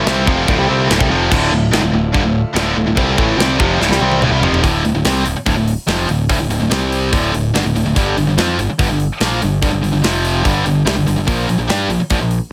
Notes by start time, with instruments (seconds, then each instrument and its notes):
Already playing: pipe organ D3 A3 E4 F4
0.06 picked electric bass C2, distorted electric guitar C3 G3 C4, snare, china
0.27 picked electric bass F1, distorted electric guitar F2 C3 F3, kick
0.48 picked electric bass D1, distorted electric guitar D2 A2, kick, china
0.58 picked electric bass C2, distorted electric guitar C3 G3
0.69 picked electric bass C2, distorted electric guitar C3 G3 C4
0.89 picked electric bass D1, distorted electric guitar D2 A2, snare, china
1.00 picked electric bass C2, distorted electric guitar C3 G3, kick
1.10 picked electric bass F1, distorted electric guitar F2 C3 F3
1.31 picked electric bass D1, distorted electric guitar D2 A2 D3, kick, china, crash
1.52 picked electric bass D1, distorted electric guitar D2 A2
1.72 picked electric bass G#1, distorted electric guitar G#2 D#3, snare, china
1.82 picked electric bass D1, distorted electric guitar D2 A2
1.93 picked electric bass D1, distorted electric guitar D2 A2
2.13 picked electric bass G1, distorted electric guitar G2 D3, kick, china
2.23 picked electric bass D1, distorted electric guitar D2 A2
2.55 picked electric bass D1, distorted electric guitar D2 A2 D3, snare, china
2.75 picked electric bass D1, distorted electric guitar D2 A2
2.85 picked electric bass D1, distorted electric guitar D2 A2
2.97 picked electric bass C2, distorted electric guitar C3 G3 C4, kick, china
3.18 picked electric bass A1, distorted electric guitar A2 E3 A3, kick
3.37 picked electric bass C2, distorted electric guitar C3 G3 C4, snare, china
3.60 picked electric bass F1, distorted electric guitar F2 C3 F3, kick
3.80 picked electric bass D1, distorted electric guitar D2 A2, snare
3.89 picked electric bass C2, distorted electric guitar C3 G3, snare
4.01 picked electric bass C2, distorted electric guitar C3 G3 C4
4.12 high tom
4.21 picked electric bass D1, distorted electric guitar D2 A2, mid tom
4.32 picked electric bass C2, distorted electric guitar C3 G3
4.41 picked electric bass F1, distorted electric guitar F2 C3 F3, floor tom
4.54 floor tom
4.63 picked electric bass D1, distorted electric guitar D2 A2 D3, kick, open hi-hat
4.84 picked electric bass D1, distorted electric guitar D2 A2, open hi-hat
4.94 picked electric bass D1, distorted electric guitar D2 A2
5.05 picked electric bass C2, distorted electric guitar C3 G3 C4, snare, open hi-hat
5.25 picked electric bass D1, distorted electric guitar D2 A2, open hi-hat
5.36 muted distorted electric guitar stroke
5.46 picked electric bass D1, distorted electric guitar D2 A2, kick, open hi-hat
5.56 picked electric bass D1, distorted electric guitar D2 A2
5.68 open hi-hat
5.87 picked electric bass F1, distorted electric guitar F2 C3 F3, snare, open hi-hat
6.09 picked electric bass D1, distorted electric guitar D2 A2, open hi-hat
6.29 picked electric bass D1, distorted electric guitar D2 A2, kick, open hi-hat
6.40 picked electric bass D1, distorted electric guitar D2 A2
6.49 picked electric bass D1, distorted electric guitar D2 A2, open hi-hat
6.61 picked electric bass D1, distorted electric guitar D2 A2
6.70 picked electric bass C2, distorted electric guitar C3 G3 C4, snare, open hi-hat
6.92 open hi-hat
7.12 picked electric bass D1, distorted electric guitar D2 A2 D3, kick, open hi-hat
7.33 picked electric bass D1, distorted electric guitar D2 A2, open hi-hat
7.54 picked electric bass G1, distorted electric guitar G2 D3, snare, open hi-hat
7.64 picked electric bass D1, distorted electric guitar D2 A2
7.75 picked electric bass D1, distorted electric guitar D2 A2, open hi-hat
7.85 picked electric bass D1, distorted electric guitar D2 A2
7.95 picked electric bass G1, distorted electric guitar G2 D3 G3, kick, open hi-hat
8.17 picked electric bass G1, distorted electric guitar G2 D3, open hi-hat
8.27 picked electric bass G1, distorted electric guitar G2 D3
8.37 picked electric bass F2, distorted electric guitar F3 C4 F4, snare, open hi-hat
8.58 picked electric bass G1, distorted electric guitar G2 D3, open hi-hat
8.69 muted distorted electric guitar stroke, muted picked electric bass stroke
8.78 picked electric bass G1, distorted electric guitar G2 D3, kick, open hi-hat
8.89 picked electric bass G1, distorted electric guitar G2 D3
9.00 open hi-hat
9.20 picked electric bass A#1, distorted electric guitar A#2 F3 A#3, snare, open hi-hat
9.42 picked electric bass G1, distorted electric guitar G2 D3, open hi-hat
9.61 picked electric bass G1, distorted electric guitar G2 D3, kick, open hi-hat
9.71 picked electric bass G1, distorted electric guitar G2 D3
9.81 picked electric bass G1, distorted electric guitar G2 D3, open hi-hat
9.91 picked electric bass G1, distorted electric guitar G2 D3
10.02 picked electric bass F1, distorted electric guitar F2 C3 F3, snare, open hi-hat
10.25 open hi-hat
10.42 picked electric bass G1, distorted electric guitar G2 D3 G3, kick, open hi-hat
10.65 picked electric bass G1, distorted electric guitar G2 D3, open hi-hat
10.85 picked electric bass C2, distorted electric guitar C3 G3, snare, open hi-hat
10.96 picked electric bass G1, distorted electric guitar G2 D3
11.06 picked electric bass G1, distorted electric guitar G2 D3, open hi-hat
11.17 picked electric bass G1, distorted electric guitar G2 D3
11.26 picked electric bass A#1, distorted electric guitar A#2 F3 A#3, kick, open hi-hat
11.48 picked electric bass A#1, distorted electric guitar A#2 F3, open hi-hat
11.58 picked electric bass A#1, distorted electric guitar A#2 F3
11.69 picked electric bass G2, distorted electric guitar G3 D4 G4, snare, open hi-hat
11.89 picked electric bass A#1, distorted electric guitar A#2 F3, open hi-hat
12.01 muted distorted electric guitar stroke
12.10 picked electric bass A#1, distorted electric guitar A#2 F3, kick, open hi-hat
12.20 picked electric bass A#1, distorted electric guitar A#2 F3
12.31 open hi-hat